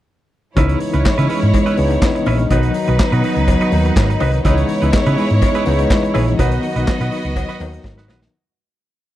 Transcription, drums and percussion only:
0.57 kick loud
0.57 closed hi-hat medium
0.57 cowbell medium
0.69 closed hi-hat soft
0.80 open hi-hat medium
0.94 closed hi-hat medium
1.05 kick loud
1.05 snare loud
1.05 clap medium
1.05 cowbell medium
1.19 closed hi-hat soft
1.30 open hi-hat medium
1.42 closed hi-hat soft
1.54 kick loud
1.54 closed hi-hat medium
1.54 cowbell medium
1.66 closed hi-hat soft
1.77 open hi-hat medium
1.91 closed hi-hat soft
2.02 kick loud
2.02 snare loud
2.02 clap medium
2.02 cowbell medium
2.16 closed hi-hat soft
2.26 open hi-hat medium
2.26 cowbell medium
2.39 closed hi-hat soft
2.50 kick medium
2.50 closed hi-hat medium
2.50 cowbell medium
2.63 closed hi-hat soft
2.74 open hi-hat medium
2.87 closed hi-hat soft
2.99 kick loud
2.99 snare loud
2.99 clap medium
2.99 cowbell medium
3.12 closed hi-hat soft
3.24 open hi-hat medium
3.36 closed hi-hat soft
3.48 kick loud
3.48 closed hi-hat medium
3.48 cowbell medium
3.61 closed hi-hat soft
3.72 open hi-hat medium
3.85 closed hi-hat soft
3.96 kick loud
3.96 snare loud
3.96 clap medium
3.96 cowbell medium
4.10 closed hi-hat soft
4.20 open hi-hat medium
4.20 cowbell medium
4.34 closed hi-hat soft
4.45 kick loud
4.45 closed hi-hat medium
4.45 cowbell medium
4.57 closed hi-hat soft
4.69 open hi-hat medium
4.82 closed hi-hat soft
4.93 kick loud
4.93 snare loud
4.93 clap medium
4.93 cowbell medium
5.06 closed hi-hat soft
5.18 open hi-hat medium
5.30 closed hi-hat soft
5.42 kick loud
5.42 closed hi-hat medium
5.42 cowbell medium
5.55 closed hi-hat soft
5.66 open hi-hat medium
5.79 closed hi-hat soft
5.90 kick loud
5.90 snare loud
5.90 clap loud
5.90 cowbell medium
6.04 closed hi-hat soft
6.14 open hi-hat medium
6.14 cowbell medium
6.28 closed hi-hat soft
6.39 kick loud
6.39 closed hi-hat medium
6.39 cowbell medium
6.51 closed hi-hat soft
6.63 open hi-hat medium
6.76 closed hi-hat soft
6.87 kick loud
6.87 snare loud
6.87 clap medium
6.87 cowbell medium
7.00 snare soft
7.00 closed hi-hat medium
7.12 open hi-hat medium
7.25 closed hi-hat soft
7.36 kick medium
7.36 closed hi-hat medium
7.36 cowbell medium
7.49 closed hi-hat soft
7.60 open hi-hat medium
7.60 cowbell medium
7.73 closed hi-hat medium
7.84 kick loud
7.84 snare medium
7.84 cowbell medium
7.98 snare medium
8.08 snare medium
8.08 cowbell medium
8.22 snare medium

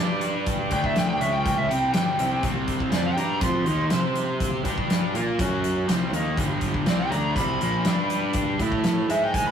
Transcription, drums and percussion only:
0.21 closed hi-hat medium
0.46 kick loud
0.46 closed hi-hat medium
0.71 kick medium
0.71 closed hi-hat medium
0.84 kick medium
0.96 snare medium
0.96 closed hi-hat medium
1.21 closed hi-hat medium
1.46 kick loud
1.46 closed hi-hat medium
1.71 closed hi-hat medium
1.94 snare loud
1.94 closed hi-hat medium
2.19 closed hi-hat medium
2.43 kick loud
2.43 closed hi-hat medium
2.68 kick medium
2.68 closed hi-hat medium
2.80 kick medium
2.92 snare loud
2.92 closed hi-hat medium
3.18 closed hi-hat medium
3.41 kick loud
3.41 closed hi-hat medium
3.66 closed hi-hat medium
3.90 snare loud
3.90 closed hi-hat medium
4.16 closed hi-hat medium
4.40 kick loud
4.40 closed hi-hat medium
4.65 kick medium
4.65 closed hi-hat medium
4.78 kick medium
4.90 snare medium
4.90 closed hi-hat medium
5.15 closed hi-hat medium
5.39 kick loud
5.39 closed hi-hat loud
5.64 closed hi-hat medium
5.89 snare loud
5.89 closed hi-hat medium
6.13 closed hi-hat medium
6.38 kick loud
6.38 closed hi-hat medium
6.61 kick medium
6.61 closed hi-hat medium
6.74 kick medium
6.86 snare loud
6.86 closed hi-hat medium
7.12 closed hi-hat medium
7.36 kick loud
7.36 closed hi-hat medium
7.61 closed hi-hat medium
7.85 snare loud
7.85 closed hi-hat medium
8.10 closed hi-hat medium
8.33 kick loud
8.33 closed hi-hat medium
8.59 kick medium
8.59 closed hi-hat medium
8.72 kick medium
8.84 snare loud
8.84 closed hi-hat medium
9.10 closed hi-hat medium
9.34 kick loud
9.34 closed hi-hat loud

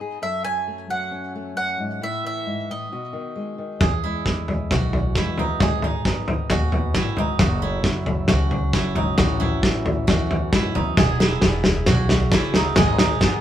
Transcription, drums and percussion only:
3.81 kick medium
3.81 snare soft
3.81 floor tom medium
4.26 kick medium
4.26 snare soft
4.48 floor tom medium
4.71 kick medium
4.71 snare soft
4.71 floor tom medium
4.93 floor tom medium
5.15 kick medium
5.15 snare soft
5.38 floor tom medium
5.60 kick medium
5.60 snare soft
5.60 floor tom loud
5.82 floor tom medium
6.05 kick medium
6.05 snare soft
6.28 floor tom medium
6.50 kick medium
6.50 snare soft
6.50 floor tom medium
6.72 floor tom medium
6.94 kick medium
6.94 snare medium
7.17 floor tom medium
7.39 kick loud
7.39 snare medium
7.39 floor tom loud
7.84 kick medium
7.84 snare medium
8.06 floor tom medium
8.28 kick medium
8.28 snare medium
8.28 floor tom medium
8.51 floor tom medium
8.73 kick medium
8.73 snare medium
8.95 floor tom medium
9.18 kick loud
9.18 snare medium
9.18 floor tom loud
9.41 floor tom medium
9.63 kick medium
9.63 snare medium
9.86 floor tom medium
10.08 kick loud
10.08 snare medium
10.08 floor tom medium
10.31 floor tom medium
10.53 kick loud
10.53 snare medium
10.75 floor tom medium
10.97 kick loud
10.97 snare medium
10.97 floor tom loud
11.20 snare medium
11.42 kick medium
11.42 snare medium
11.64 snare medium
11.64 floor tom medium
11.86 kick medium
11.86 snare medium
11.86 floor tom medium
12.09 snare medium
12.09 floor tom medium
12.32 kick loud
12.32 snare medium
12.54 snare medium
12.54 floor tom medium
12.76 kick loud
12.76 snare medium
12.76 floor tom loud
12.98 snare medium
12.98 floor tom medium
13.21 kick medium
13.21 snare medium

